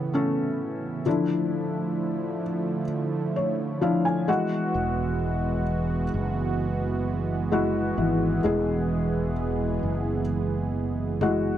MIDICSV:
0, 0, Header, 1, 5, 480
1, 0, Start_track
1, 0, Tempo, 923077
1, 550, Time_signature, 4, 2, 24, 8
1, 6021, End_track
2, 0, Start_track
2, 0, Title_t, "Felt piano"
2, 0, Program_c, 0, 0
2, 0, Control_c, 0, 64, 127
2, 70, Note_on_c, 0, 57, 57
2, 74, Note_on_c, 0, 61, 58
2, 78, Note_on_c, 0, 69, 65
2, 526, Note_off_c, 0, 57, 0
2, 528, Note_off_c, 0, 61, 0
2, 530, Note_off_c, 0, 69, 0
2, 551, Note_on_c, 0, 53, 57
2, 555, Note_on_c, 0, 50, 49
2, 555, Note_on_c, 0, 62, 60
2, 558, Control_c, 0, 64, 0
2, 560, Note_on_c, 0, 64, 66
2, 643, Control_c, 0, 64, 127
2, 1252, Note_off_c, 0, 50, 0
2, 1462, Note_off_c, 0, 53, 0
2, 1465, Note_off_c, 0, 62, 0
2, 1467, Note_off_c, 0, 64, 0
2, 1748, Note_on_c, 0, 73, 52
2, 1972, Note_off_c, 0, 73, 0
2, 1984, Note_on_c, 0, 53, 62
2, 1987, Note_on_c, 0, 62, 51
2, 1988, Note_on_c, 0, 77, 52
2, 1991, Note_on_c, 0, 64, 71
2, 2100, Note_off_c, 0, 77, 0
2, 2107, Note_on_c, 0, 80, 60
2, 2219, Note_off_c, 0, 64, 0
2, 2220, Note_off_c, 0, 80, 0
2, 2225, Note_on_c, 0, 56, 71
2, 2226, Note_on_c, 0, 52, 60
2, 2227, Note_off_c, 0, 53, 0
2, 2227, Note_on_c, 0, 64, 59
2, 2229, Note_off_c, 0, 62, 0
2, 2229, Note_on_c, 0, 78, 60
2, 2231, Note_on_c, 0, 66, 84
2, 2236, Control_c, 0, 64, 0
2, 2315, Control_c, 0, 64, 127
2, 2453, Note_off_c, 0, 78, 0
2, 2927, Note_off_c, 0, 52, 0
2, 3139, Note_off_c, 0, 56, 0
2, 3141, Note_off_c, 0, 64, 0
2, 3143, Note_off_c, 0, 66, 0
2, 3909, Note_on_c, 0, 56, 61
2, 3912, Note_on_c, 0, 64, 60
2, 3915, Note_on_c, 0, 66, 68
2, 4149, Note_on_c, 0, 52, 60
2, 4366, Note_off_c, 0, 56, 0
2, 4367, Note_off_c, 0, 64, 0
2, 4369, Note_off_c, 0, 66, 0
2, 4388, Note_on_c, 0, 56, 69
2, 4391, Note_on_c, 0, 64, 57
2, 4397, Note_on_c, 0, 68, 70
2, 4849, Note_off_c, 0, 52, 0
2, 5301, Note_off_c, 0, 56, 0
2, 5303, Note_off_c, 0, 64, 0
2, 5305, Note_off_c, 0, 68, 0
2, 5833, Note_on_c, 0, 56, 59
2, 5837, Note_on_c, 0, 64, 57
2, 5838, Note_on_c, 0, 66, 69
2, 6021, Note_off_c, 0, 56, 0
2, 6021, Note_off_c, 0, 64, 0
2, 6021, Note_off_c, 0, 66, 0
2, 6021, End_track
3, 0, Start_track
3, 0, Title_t, "Analog synth pad"
3, 0, Program_c, 1, 89
3, 0, Note_on_c, 1, 49, 62
3, 0, Note_on_c, 1, 52, 54
3, 0, Note_on_c, 1, 59, 63
3, 0, Note_on_c, 1, 64, 71
3, 530, Note_off_c, 1, 52, 0
3, 531, Note_off_c, 1, 49, 0
3, 541, Note_off_c, 1, 59, 0
3, 547, Note_on_c, 1, 53, 62
3, 547, Note_on_c, 1, 57, 56
3, 551, Note_on_c, 1, 50, 64
3, 2210, Note_off_c, 1, 64, 0
3, 2212, Note_off_c, 1, 53, 0
3, 2212, Note_off_c, 1, 57, 0
3, 2214, Note_off_c, 1, 50, 0
3, 2225, Note_on_c, 1, 66, 81
3, 2228, Note_on_c, 1, 52, 73
3, 2228, Note_on_c, 1, 56, 66
3, 2230, Note_on_c, 1, 59, 59
3, 4128, Note_off_c, 1, 66, 0
3, 4148, Note_on_c, 1, 68, 84
3, 6021, Note_off_c, 1, 52, 0
3, 6021, Note_off_c, 1, 56, 0
3, 6021, Note_off_c, 1, 59, 0
3, 6021, Note_off_c, 1, 68, 0
3, 6021, End_track
4, 0, Start_track
4, 0, Title_t, "Fretless electric bass"
4, 0, Program_c, 2, 35
4, 2468, Note_on_c, 2, 28, 77
4, 3168, Note_off_c, 2, 28, 0
4, 3192, Note_on_c, 2, 30, 72
4, 4130, Note_off_c, 2, 30, 0
4, 4146, Note_on_c, 2, 32, 69
4, 4371, Note_off_c, 2, 32, 0
4, 4390, Note_on_c, 2, 28, 73
4, 5089, Note_off_c, 2, 28, 0
4, 5111, Note_on_c, 2, 30, 66
4, 6021, Note_off_c, 2, 30, 0
4, 6021, End_track
5, 0, Start_track
5, 0, Title_t, "Drums"
5, 5830, Note_on_c, 9, 48, 47
5, 5882, Note_off_c, 9, 48, 0
5, 6021, End_track
0, 0, End_of_file